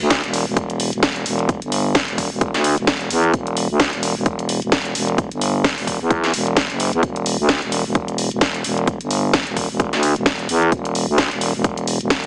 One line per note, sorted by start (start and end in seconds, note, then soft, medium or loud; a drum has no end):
0.01 0.22 D2 loud
0.10 kick loud
0.10 snare loud
0.10 closed hi-hat medium
0.24 0.45 E1 loud
0.24 closed hi-hat medium
0.34 open hi-hat loud
0.47 0.91 E1 loud
0.57 kick loud
0.57 closed hi-hat medium
0.70 closed hi-hat medium
0.80 open hi-hat loud
0.93 1.24 E1 medium
0.93 closed hi-hat soft
1.03 kick loud
1.03 snare loud
1.03 closed hi-hat medium
1.16 closed hi-hat medium
1.26 1.60 E1 loud
1.26 open hi-hat loud
1.39 closed hi-hat soft
1.49 kick loud
1.49 closed hi-hat medium
1.62 2.06 G1 medium
1.62 closed hi-hat soft
1.72 open hi-hat loud
1.95 kick loud
1.95 snare loud
1.95 closed hi-hat medium
2.08 2.29 E1 loud
2.08 closed hi-hat medium
2.18 kick medium
2.18 open hi-hat loud
2.31 2.52 E1 loud
2.41 kick loud
2.41 closed hi-hat medium
2.54 2.75 D2 loud
2.54 snare soft
2.54 closed hi-hat medium
2.64 open hi-hat loud
2.78 3.09 E1 medium
2.78 closed hi-hat soft
2.87 kick loud
2.87 snare loud
2.87 closed hi-hat medium
3.01 closed hi-hat soft
3.10 3.32 E2 loud
3.10 open hi-hat loud
3.24 closed hi-hat soft
3.34 3.68 E1 loud
3.34 kick loud
3.34 closed hi-hat medium
3.47 closed hi-hat soft
3.57 open hi-hat loud
3.70 3.91 D2 medium
3.80 kick loud
3.80 snare loud
3.80 closed hi-hat medium
3.93 4.14 E1 loud
3.93 closed hi-hat soft
4.03 open hi-hat loud
4.16 4.60 E1 loud
4.26 kick loud
4.26 closed hi-hat medium
4.39 closed hi-hat medium
4.49 open hi-hat loud
4.62 4.94 E1 medium
4.62 closed hi-hat soft
4.72 kick loud
4.72 snare loud
4.72 closed hi-hat medium
4.85 closed hi-hat soft
4.95 5.29 E1 loud
4.95 open hi-hat loud
5.08 closed hi-hat soft
5.18 kick loud
5.18 closed hi-hat medium
5.31 5.75 G1 medium
5.31 closed hi-hat soft
5.41 open hi-hat loud
5.64 kick loud
5.64 snare loud
5.64 closed hi-hat medium
5.78 5.99 E1 loud
5.78 open hi-hat medium
5.87 kick medium
5.87 open hi-hat loud
6.01 6.32 E2 loud
6.11 kick loud
6.11 closed hi-hat medium
6.24 snare soft
6.24 closed hi-hat soft
6.34 6.68 E1 loud
6.34 open hi-hat loud
6.47 closed hi-hat soft
6.57 kick loud
6.57 snare loud
6.57 closed hi-hat medium
6.70 6.91 F#1 loud
6.70 closed hi-hat soft
6.80 open hi-hat loud
6.93 7.01 E2 loud
6.93 closed hi-hat soft
7.03 7.37 E1 medium
7.03 kick loud
7.03 closed hi-hat medium
7.16 closed hi-hat soft
7.26 open hi-hat loud
7.39 7.60 D2 loud
7.49 kick loud
7.49 snare loud
7.49 closed hi-hat medium
7.62 7.83 E1 loud
7.62 closed hi-hat soft
7.72 open hi-hat loud
7.85 8.29 E1 medium
7.95 kick loud
7.95 closed hi-hat medium
8.08 closed hi-hat soft
8.18 open hi-hat loud
8.31 8.63 E1 medium
8.31 closed hi-hat soft
8.41 kick loud
8.41 snare loud
8.41 closed hi-hat medium
8.54 closed hi-hat soft
8.64 8.99 E1 loud
8.64 open hi-hat loud
8.78 closed hi-hat soft
8.87 kick loud
8.87 closed hi-hat medium
9.01 9.45 G1 medium
9.01 closed hi-hat medium
9.11 open hi-hat loud
9.34 kick loud
9.34 snare loud
9.34 closed hi-hat medium
9.47 9.68 E1 loud
9.47 closed hi-hat soft
9.57 kick medium
9.57 open hi-hat loud
9.70 9.91 E1 loud
9.80 kick loud
9.80 closed hi-hat medium
9.93 10.14 D2 loud
9.93 snare soft
9.93 closed hi-hat medium
10.03 open hi-hat loud
10.16 10.47 E1 loud
10.16 closed hi-hat soft
10.26 kick loud
10.26 snare loud
10.26 closed hi-hat medium
10.39 closed hi-hat medium
10.49 10.71 E2 loud
10.49 open hi-hat loud
10.62 closed hi-hat soft
10.72 11.06 E1 medium
10.72 kick loud
10.72 closed hi-hat medium
10.85 closed hi-hat medium
10.95 open hi-hat medium
11.08 11.29 D2 medium
11.18 kick loud
11.18 snare loud
11.18 closed hi-hat medium
11.31 11.52 E1 loud
11.31 closed hi-hat medium
11.41 open hi-hat loud
11.55 11.99 E1 loud
11.64 kick loud
11.64 closed hi-hat medium
11.77 closed hi-hat medium
11.87 open hi-hat loud
12.01 12.26 E1 loud
12.01 closed hi-hat soft
12.10 kick loud
12.10 snare loud
12.10 closed hi-hat medium